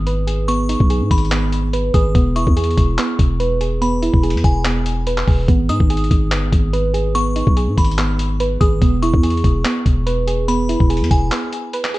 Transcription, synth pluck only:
Already playing: B3 D#4 G#4
0.07 B4
0.27 G#4
0.48 B3
0.69 D#4
0.90 G#4
1.32 B3
1.73 B4
1.94 G#4
2.15 B3
2.36 E4
2.57 G#4
2.99 B3
3.40 B4
3.61 G#4
3.81 B3
4.02 E4
4.23 G#4
4.65 B3
5.07 B4
5.28 G#4
5.48 B3
5.69 D#4
5.90 G#4
6.32 B3
6.73 B4
6.94 G#4
7.15 B3
7.36 D#4
7.57 G#4
7.98 B3
8.40 B4
8.61 G#4
8.82 B3
9.03 E4
9.23 G#4
9.65 B3
10.06 B4
10.27 G#4
10.48 B3
10.69 E4
10.90 G#4
11.32 B3
11.74 B4
11.94 G#4

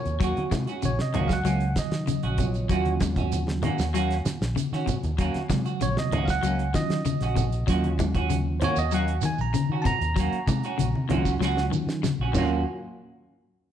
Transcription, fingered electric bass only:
0.06 D#2
0.38 muted fingered electric bass stroke
0.51 C3
0.84 A#1
0.98 C3
1.14 C#2
1.45 C#2
1.91 D#3
2.08 muted fingered electric bass stroke
2.23 A#1
2.69 D#2
3.79 D#2
4.26 muted fingered electric bass stroke
4.41 A#1
4.72 D#3
5.03 D#2
5.34 muted fingered electric bass stroke
5.50 C3
5.81 A#1
5.96 C3
6.11 C#2
6.43 C#2
6.90 D#3
7.07 muted fingered electric bass stroke
7.21 A#1
7.68 D#2
8.77 D#2
9.23 muted fingered electric bass stroke
9.38 A#1
9.69 D#3
10.01 D#2
10.47 C3
10.79 A#1
10.94 C3
11.10 C#2
11.41 C#2
11.87 D#3
12.03 muted fingered electric bass stroke
12.19 A#1
12.35 D#2

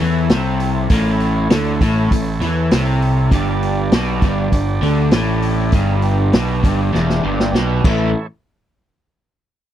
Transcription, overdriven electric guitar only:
0.00 E3
0.31 C3
0.91 A2
1.51 D3
1.82 A2
2.13 A2
2.42 E3
2.73 C3
3.32 G2
3.93 B2
4.23 G2
4.53 G2
4.82 D3
5.13 A2
5.74 G2
6.34 B2
6.64 G2
6.93 E2
7.24 G2
7.55 B2
7.85 A2 E3 A3

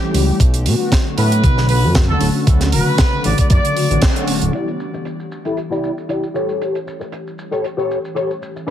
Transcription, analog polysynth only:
0.02 E3 G3 A3 C#4 G4
0.65 D3 F#3 A3 B3 F#4
1.83 D3 F#3 A3 B3 F#4
2.08 D3 F#3 A3 C#4 F#4
2.72 C#3 D3 F#3 A3 F#4
3.90 D3 F#3 A3 C#4 F#4
4.16 D3 F#3 A3 C#4 F#4
4.53 E3 G3 B3 D4 G4
6.34 E3 G3 A3 C#4 G4
8.67 D3

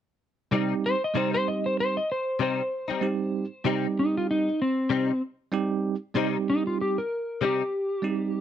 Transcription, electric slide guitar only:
0.86 C5
1.04 D#5
1.17 C5
1.34 C5
1.48 D#5
1.66 C5
1.80 C5
1.97 D#5
2.12 C5
2.43 C5
3.99 D#4
4.17 F4
4.31 D#4
4.62 C4
6.50 D#4
6.67 F4
6.81 G4
6.98 A#4
7.45 G4

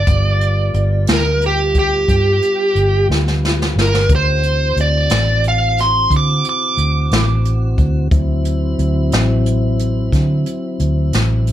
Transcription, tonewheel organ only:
0.09 G3 B3 F4
4.10 C#4 F4 G4
4.43 E3 C4 F#4
8.11 F#3 C4 E4

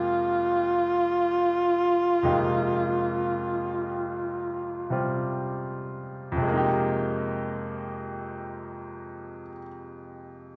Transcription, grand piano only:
Already playing: F2 C3 G#3 A#3 D#4 G4
2.23 F2 C3 G#3 A#3 D#4 G4
4.90 C3 G3 C4 F4
6.32 F2
6.37 C3
6.42 G#3
6.47 A#3
6.52 D#4
6.57 G4

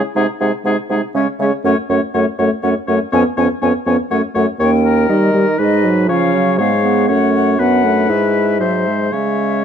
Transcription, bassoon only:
0.16 C3
0.41 C3
0.65 C3
0.90 C3
1.15 C#3
1.39 C#3
1.64 F#2
1.89 F#2
2.14 F#2
2.39 F#2
2.63 F#2
2.88 F#2
3.13 F2
3.37 F2
3.62 F2
3.86 F2
4.11 F#2
4.35 F#2
4.60 D#2
5.09 D#3
5.59 G#2
6.09 C#3
6.58 G#2
7.09 F#2
7.59 F#2
8.09 G#2
8.60 G#2
9.12 C#3

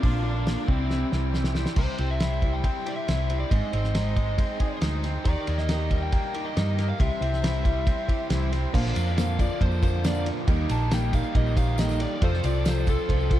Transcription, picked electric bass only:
0.04 A#1
0.68 C2
1.13 C2
1.77 C2
1.99 C2
3.09 C2
3.51 G#1
3.73 G#1
4.82 D2
5.25 D#2
5.48 D#2
6.57 G2
7.00 C2
7.21 C2
8.30 C2
8.74 A#1
8.96 F2
9.61 F2
10.48 D#2
10.70 A#1
11.35 A#1
12.22 F2
12.44 C2
13.09 C2

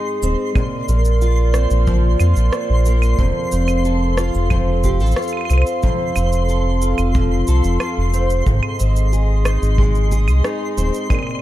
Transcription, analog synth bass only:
0.22 D#1
0.88 A#1
1.71 A#1
2.20 F2
2.36 A#1
2.70 A#1
3.19 F1
3.52 F1
4.35 F1
5.01 A1
5.50 C2
6.16 F1
6.99 F1
7.48 C2
7.64 F1
7.98 F1
8.47 G#1
8.80 G#1
9.62 G#1
10.28 C2
10.77 D#1

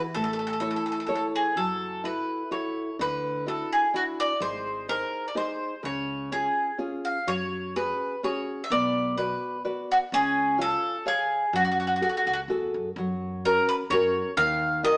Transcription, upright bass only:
0.16 A1
1.56 F#1
2.99 D2
4.40 G#1
5.83 C#2
7.27 F#2
8.70 B1
10.12 C#2
11.53 F#2
12.26 C#2
12.48 E2
12.74 F#2
12.96 F#2
13.90 F#2
14.37 D#2

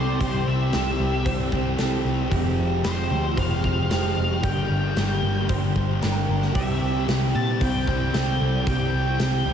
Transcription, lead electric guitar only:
Already playing: C5
0.21 C5
0.48 E5
2.85 C5
3.39 F5
3.91 F5
4.44 G5
6.56 E5
7.35 A5
7.62 G5
8.68 G5

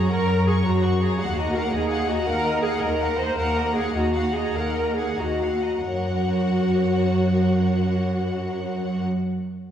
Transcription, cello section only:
0.11 F#2
0.65 F#2
1.19 D#2
1.72 D#2
2.26 D#2
2.81 D#2
3.37 D#2
3.94 D#2
4.54 D#2
5.17 D#2
5.84 F#2

